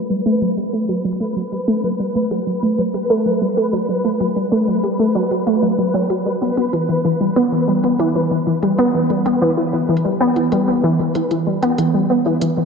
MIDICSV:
0, 0, Header, 1, 4, 480
1, 0, Start_track
1, 0, Key_signature, 1, "major"
1, 0, Tempo, 631579
1, 1275, Time_signature, 4, 2, 24, 8
1, 9614, End_track
2, 0, Start_track
2, 0, Title_t, "Synth texture"
2, 0, Program_c, 0, 99
2, 0, Note_on_c, 0, 71, 82
2, 9614, Note_off_c, 0, 71, 0
2, 9614, End_track
3, 0, Start_track
3, 0, Title_t, "Synth pluck"
3, 0, Program_c, 1, 84
3, 75, Note_on_c, 1, 55, 76
3, 167, Note_off_c, 1, 55, 0
3, 195, Note_on_c, 1, 57, 94
3, 287, Note_off_c, 1, 57, 0
3, 315, Note_on_c, 1, 54, 79
3, 407, Note_off_c, 1, 54, 0
3, 434, Note_on_c, 1, 55, 73
3, 526, Note_off_c, 1, 55, 0
3, 555, Note_on_c, 1, 57, 73
3, 646, Note_off_c, 1, 57, 0
3, 675, Note_on_c, 1, 54, 97
3, 766, Note_off_c, 1, 54, 0
3, 795, Note_on_c, 1, 54, 80
3, 850, Note_off_c, 1, 54, 0
3, 914, Note_on_c, 1, 57, 73
3, 1006, Note_off_c, 1, 57, 0
3, 1035, Note_on_c, 1, 54, 72
3, 1126, Note_off_c, 1, 54, 0
3, 1155, Note_on_c, 1, 55, 73
3, 1247, Note_off_c, 1, 55, 0
3, 1275, Note_on_c, 1, 57, 98
3, 1366, Note_off_c, 1, 57, 0
3, 1395, Note_on_c, 1, 54, 74
3, 1487, Note_off_c, 1, 54, 0
3, 1516, Note_on_c, 1, 55, 75
3, 1607, Note_off_c, 1, 55, 0
3, 1636, Note_on_c, 1, 57, 70
3, 1727, Note_off_c, 1, 57, 0
3, 1756, Note_on_c, 1, 54, 97
3, 1847, Note_off_c, 1, 54, 0
3, 1875, Note_on_c, 1, 54, 74
3, 1930, Note_off_c, 1, 54, 0
3, 1995, Note_on_c, 1, 57, 72
3, 2087, Note_off_c, 1, 57, 0
3, 2115, Note_on_c, 1, 54, 71
3, 2207, Note_off_c, 1, 54, 0
3, 2235, Note_on_c, 1, 55, 80
3, 2326, Note_off_c, 1, 55, 0
3, 2355, Note_on_c, 1, 57, 98
3, 2447, Note_off_c, 1, 57, 0
3, 2474, Note_on_c, 1, 54, 75
3, 2566, Note_off_c, 1, 54, 0
3, 2595, Note_on_c, 1, 55, 75
3, 2687, Note_off_c, 1, 55, 0
3, 2714, Note_on_c, 1, 57, 80
3, 2806, Note_off_c, 1, 57, 0
3, 2834, Note_on_c, 1, 54, 97
3, 2926, Note_off_c, 1, 54, 0
3, 2954, Note_on_c, 1, 54, 72
3, 3009, Note_off_c, 1, 54, 0
3, 3074, Note_on_c, 1, 57, 74
3, 3166, Note_off_c, 1, 57, 0
3, 3194, Note_on_c, 1, 54, 80
3, 3286, Note_off_c, 1, 54, 0
3, 3315, Note_on_c, 1, 55, 74
3, 3406, Note_off_c, 1, 55, 0
3, 3434, Note_on_c, 1, 57, 95
3, 3526, Note_off_c, 1, 57, 0
3, 3555, Note_on_c, 1, 54, 70
3, 3646, Note_off_c, 1, 54, 0
3, 3674, Note_on_c, 1, 55, 80
3, 3766, Note_off_c, 1, 55, 0
3, 3795, Note_on_c, 1, 57, 74
3, 3887, Note_off_c, 1, 57, 0
3, 3915, Note_on_c, 1, 54, 97
3, 4006, Note_off_c, 1, 54, 0
3, 4035, Note_on_c, 1, 54, 74
3, 4090, Note_off_c, 1, 54, 0
3, 4155, Note_on_c, 1, 57, 80
3, 4247, Note_off_c, 1, 57, 0
3, 4275, Note_on_c, 1, 54, 77
3, 4366, Note_off_c, 1, 54, 0
3, 4395, Note_on_c, 1, 54, 75
3, 4487, Note_off_c, 1, 54, 0
3, 4515, Note_on_c, 1, 54, 95
3, 4607, Note_off_c, 1, 54, 0
3, 4635, Note_on_c, 1, 54, 80
3, 4749, Note_off_c, 1, 54, 0
3, 4756, Note_on_c, 1, 55, 73
3, 4810, Note_off_c, 1, 55, 0
3, 4876, Note_on_c, 1, 59, 73
3, 4967, Note_off_c, 1, 59, 0
3, 4996, Note_on_c, 1, 59, 72
3, 5050, Note_off_c, 1, 59, 0
3, 5115, Note_on_c, 1, 52, 80
3, 5170, Note_off_c, 1, 52, 0
3, 5236, Note_on_c, 1, 52, 72
3, 5327, Note_off_c, 1, 52, 0
3, 5355, Note_on_c, 1, 52, 78
3, 5447, Note_off_c, 1, 52, 0
3, 5475, Note_on_c, 1, 55, 71
3, 5567, Note_off_c, 1, 55, 0
3, 5595, Note_on_c, 1, 59, 100
3, 5687, Note_off_c, 1, 59, 0
3, 5716, Note_on_c, 1, 52, 72
3, 5807, Note_off_c, 1, 52, 0
3, 5836, Note_on_c, 1, 55, 75
3, 5927, Note_off_c, 1, 55, 0
3, 5957, Note_on_c, 1, 59, 74
3, 6047, Note_off_c, 1, 59, 0
3, 6076, Note_on_c, 1, 52, 97
3, 6167, Note_off_c, 1, 52, 0
3, 6196, Note_on_c, 1, 52, 76
3, 6251, Note_off_c, 1, 52, 0
3, 6316, Note_on_c, 1, 52, 72
3, 6407, Note_off_c, 1, 52, 0
3, 6436, Note_on_c, 1, 52, 73
3, 6527, Note_off_c, 1, 52, 0
3, 6556, Note_on_c, 1, 55, 80
3, 6647, Note_off_c, 1, 55, 0
3, 6676, Note_on_c, 1, 59, 99
3, 6767, Note_off_c, 1, 59, 0
3, 6796, Note_on_c, 1, 52, 71
3, 6887, Note_off_c, 1, 52, 0
3, 6916, Note_on_c, 1, 55, 72
3, 7007, Note_off_c, 1, 55, 0
3, 7036, Note_on_c, 1, 59, 83
3, 7127, Note_off_c, 1, 59, 0
3, 7156, Note_on_c, 1, 52, 100
3, 7247, Note_off_c, 1, 52, 0
3, 7276, Note_on_c, 1, 52, 72
3, 7330, Note_off_c, 1, 52, 0
3, 7395, Note_on_c, 1, 52, 72
3, 7487, Note_off_c, 1, 52, 0
3, 7515, Note_on_c, 1, 52, 82
3, 7607, Note_off_c, 1, 52, 0
3, 7635, Note_on_c, 1, 55, 71
3, 7727, Note_off_c, 1, 55, 0
3, 7755, Note_on_c, 1, 59, 100
3, 7847, Note_off_c, 1, 59, 0
3, 7875, Note_on_c, 1, 52, 76
3, 7966, Note_off_c, 1, 52, 0
3, 7995, Note_on_c, 1, 55, 82
3, 8087, Note_off_c, 1, 55, 0
3, 8116, Note_on_c, 1, 59, 74
3, 8207, Note_off_c, 1, 59, 0
3, 8235, Note_on_c, 1, 52, 98
3, 8327, Note_off_c, 1, 52, 0
3, 8356, Note_on_c, 1, 52, 73
3, 8410, Note_off_c, 1, 52, 0
3, 8476, Note_on_c, 1, 52, 83
3, 8567, Note_off_c, 1, 52, 0
3, 8596, Note_on_c, 1, 52, 76
3, 8687, Note_off_c, 1, 52, 0
3, 8716, Note_on_c, 1, 55, 75
3, 8807, Note_off_c, 1, 55, 0
3, 8835, Note_on_c, 1, 59, 99
3, 8927, Note_off_c, 1, 59, 0
3, 8955, Note_on_c, 1, 52, 83
3, 9047, Note_off_c, 1, 52, 0
3, 9075, Note_on_c, 1, 55, 75
3, 9167, Note_off_c, 1, 55, 0
3, 9195, Note_on_c, 1, 59, 77
3, 9287, Note_off_c, 1, 59, 0
3, 9316, Note_on_c, 1, 52, 92
3, 9407, Note_off_c, 1, 52, 0
3, 9436, Note_on_c, 1, 52, 80
3, 9490, Note_off_c, 1, 52, 0
3, 9556, Note_on_c, 1, 52, 70
3, 9614, Note_off_c, 1, 52, 0
3, 9614, End_track
4, 0, Start_track
4, 0, Title_t, "Drums"
4, 195, Note_on_c, 9, 42, 52
4, 271, Note_off_c, 9, 42, 0
4, 316, Note_on_c, 9, 42, 74
4, 392, Note_off_c, 9, 42, 0
4, 855, Note_on_c, 9, 42, 76
4, 915, Note_off_c, 9, 42, 0
4, 915, Note_on_c, 9, 42, 51
4, 991, Note_off_c, 9, 42, 0
4, 1155, Note_on_c, 9, 42, 35
4, 1231, Note_off_c, 9, 42, 0
4, 1274, Note_on_c, 9, 42, 72
4, 1350, Note_off_c, 9, 42, 0
4, 1755, Note_on_c, 9, 42, 72
4, 1831, Note_off_c, 9, 42, 0
4, 2116, Note_on_c, 9, 42, 50
4, 2192, Note_off_c, 9, 42, 0
4, 2236, Note_on_c, 9, 42, 74
4, 2312, Note_off_c, 9, 42, 0
4, 2715, Note_on_c, 9, 42, 73
4, 2791, Note_off_c, 9, 42, 0
4, 2835, Note_on_c, 9, 42, 50
4, 2911, Note_off_c, 9, 42, 0
4, 3076, Note_on_c, 9, 42, 33
4, 3152, Note_off_c, 9, 42, 0
4, 3196, Note_on_c, 9, 42, 70
4, 3272, Note_off_c, 9, 42, 0
4, 3676, Note_on_c, 9, 42, 71
4, 3752, Note_off_c, 9, 42, 0
4, 4037, Note_on_c, 9, 42, 49
4, 4113, Note_off_c, 9, 42, 0
4, 4156, Note_on_c, 9, 42, 70
4, 4232, Note_off_c, 9, 42, 0
4, 4636, Note_on_c, 9, 42, 70
4, 4712, Note_off_c, 9, 42, 0
4, 4996, Note_on_c, 9, 42, 33
4, 5072, Note_off_c, 9, 42, 0
4, 5116, Note_on_c, 9, 42, 69
4, 5192, Note_off_c, 9, 42, 0
4, 5596, Note_on_c, 9, 42, 68
4, 5672, Note_off_c, 9, 42, 0
4, 5956, Note_on_c, 9, 42, 46
4, 6032, Note_off_c, 9, 42, 0
4, 6077, Note_on_c, 9, 42, 68
4, 6153, Note_off_c, 9, 42, 0
4, 6556, Note_on_c, 9, 42, 72
4, 6632, Note_off_c, 9, 42, 0
4, 6676, Note_on_c, 9, 42, 48
4, 6752, Note_off_c, 9, 42, 0
4, 6915, Note_on_c, 9, 42, 32
4, 6991, Note_off_c, 9, 42, 0
4, 7035, Note_on_c, 9, 42, 68
4, 7111, Note_off_c, 9, 42, 0
4, 7575, Note_on_c, 9, 42, 70
4, 7651, Note_off_c, 9, 42, 0
4, 7876, Note_on_c, 9, 42, 47
4, 7952, Note_off_c, 9, 42, 0
4, 7995, Note_on_c, 9, 42, 71
4, 8071, Note_off_c, 9, 42, 0
4, 8475, Note_on_c, 9, 42, 70
4, 8551, Note_off_c, 9, 42, 0
4, 8595, Note_on_c, 9, 42, 47
4, 8671, Note_off_c, 9, 42, 0
4, 8836, Note_on_c, 9, 42, 33
4, 8912, Note_off_c, 9, 42, 0
4, 8956, Note_on_c, 9, 42, 74
4, 9032, Note_off_c, 9, 42, 0
4, 9435, Note_on_c, 9, 42, 70
4, 9511, Note_off_c, 9, 42, 0
4, 9614, End_track
0, 0, End_of_file